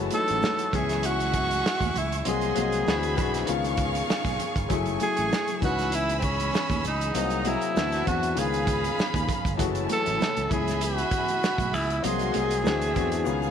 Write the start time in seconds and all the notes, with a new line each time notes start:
Already playing: E3 F#3 G#3 A3 C#4 E4 F#4 C#5 A5
0.11 E3 F#3 A3 D#4, closed hi-hat, high conga, shaker
0.15 A4
0.28 A1, closed hi-hat, shaker
0.42 snare, muted conga, high conga, shaker
0.58 closed hi-hat, muted conga, shaker
0.72 C#2 E3 B3 C#4 E4 G#4 E5 C#6, kick, closed hi-hat, low conga
0.89 snare, closed hi-hat, shaker
1.03 F#4, closed hi-hat, muted conga, shaker
1.20 closed hi-hat, muted conga, shaker
1.34 kick, closed hi-hat, shaker
1.51 closed hi-hat, high conga, shaker
1.64 snare, muted conga, shaker
1.81 D#2, kick, closed hi-hat, muted conga, high conga, shaker
1.94 C#2 E4, closed hi-hat, low conga, shaker
2.12 closed hi-hat, shaker
2.25 C2 F#3 G#3 A#3 C4 F#4 G#4 D#5 C6, closed hi-hat, muted conga, low conga, shaker
2.29 G#4
2.41 closed hi-hat, muted conga, shaker
2.55 C2 F#3 A#3 C4 G#4, closed hi-hat, high conga, shaker
2.72 closed hi-hat, shaker
2.86 D2 D3 E3 F#3 A3 C4 D4 E4 F#4 E5 B5, snare, muted conga, high conga, shaker
3.03 closed hi-hat, muted conga, shaker
3.16 B1 E3 C4 D4 F#4, kick, closed hi-hat, low conga, shaker
3.34 snare, closed hi-hat, shaker
3.46 C#2 C#3 D#3 F3 B3 C#4 D#4 F4 G#4 F5 C#6, closed hi-hat, shaker
3.64 closed hi-hat, muted conga, shaker
3.77 kick, closed hi-hat
3.95 closed hi-hat, high conga, shaker
4.08 muted fingered electric bass stroke, snare, muted conga, shaker
4.25 B1, kick, closed hi-hat, muted conga, high conga, shaker
4.39 closed hi-hat, low conga, shaker
4.56 G1, kick, closed hi-hat, shaker
4.69 F#1 F#3 A3 E4 G#4 G#5 C#6, kick, closed hi-hat, low conga, shaker
4.85 closed hi-hat, muted conga, shaker
4.99 F#3 A3 E4 G#4, closed hi-hat, high conga, shaker
5.04 G#4
5.17 A1, closed hi-hat, shaker
5.31 snare, high conga, shaker
5.48 closed hi-hat, muted conga, shaker
5.60 C#2 E3 B3 C#4 D#4 F#4 G#4 B4 B5 E6, kick, closed hi-hat, low conga
5.79 snare, closed hi-hat, shaker
5.92 E4, closed hi-hat, shaker
6.09 closed hi-hat, muted conga, shaker
6.19 C4, kick, closed hi-hat
6.24 C#4, shaker
6.40 closed hi-hat, high conga, shaker
6.53 snare, muted conga, shaker
6.70 D#2, kick, closed hi-hat, muted conga, high conga, shaker
6.83 C#2 D#4, closed hi-hat, low conga, shaker
7.01 closed hi-hat, shaker
7.14 C2 C3 F#3 A#3 C4 F#4 G#4 D#5 A#5, closed hi-hat, muted conga, low conga, shaker
7.30 closed hi-hat, shaker
7.44 F#3 A#3 C4 E4 G#4, closed hi-hat, high conga, shaker
7.61 closed hi-hat, shaker
7.74 D2 D3 E3 A3 C4 D4 E4 F#4 E5 A5, snare, high conga, shaker
7.92 snare, closed hi-hat, shaker
8.05 E2 E3 C4 D4 F#4, kick, closed hi-hat, low conga
8.23 closed hi-hat, shaker
8.35 C#2 C#3 D#3 F3 B3 C#4 D#4 F4 G#4 F5 B5, closed hi-hat, muted conga, shaker
8.53 closed hi-hat, muted conga, shaker
8.67 kick, closed hi-hat, shaker
8.84 closed hi-hat, high conga, shaker
8.98 muted fingered electric bass stroke, snare, shaker
9.14 D#2, kick, closed hi-hat, high conga, shaker
9.28 kick, closed hi-hat, low conga, shaker
9.45 G1, kick, closed hi-hat, shaker
9.57 F#1 E3 F#3 G#3 A3 E4 F#4 C#5 A5, kick, closed hi-hat, muted conga, low conga, shaker
9.75 closed hi-hat, shaker
9.88 E3 F#3 A3 F#4, closed hi-hat, high conga, shaker
9.93 A4
10.06 A1, closed hi-hat, shaker
10.20 muted fingered electric bass stroke, snare, muted conga, high conga, shaker
10.37 C#2, closed hi-hat, muted conga, shaker
10.49 C#2 E3 B3 C#4 E4 G#4 E5 B5, kick, closed hi-hat, low conga
10.68 snare, closed hi-hat, shaker
10.81 F#4, closed hi-hat, muted conga, shaker
10.98 closed hi-hat, muted conga, shaker
11.11 kick, closed hi-hat, shaker
11.28 closed hi-hat, high conga, shaker
11.43 snare, shaker
11.58 B1, kick, closed hi-hat, high conga, shaker
11.73 C#2 E4, open hi-hat, low conga, shaker
11.90 closed hi-hat, shaker
12.02 C2 C3 F#3 A#3 C4 D#4 F#4 G#4 D#5 C6, closed hi-hat, muted conga, low conga, shaker
12.19 closed hi-hat, shaker
12.32 C2 F#3 A#3 C4 G#4, closed hi-hat, high conga
12.51 closed hi-hat, shaker
12.63 D2 D3 E3 A3 C4 D4 E4 F#4 E5, snare, muted conga, high conga, shaker
12.81 closed hi-hat, shaker
12.94 E2 E3 C4 D4 F#4, kick, closed hi-hat, low conga, shaker
13.12 closed hi-hat, shaker
13.24 C#2 D#3 G#3 B3 C#4 F4 G#4 F5, muted conga, shaker
13.42 muted conga, shaker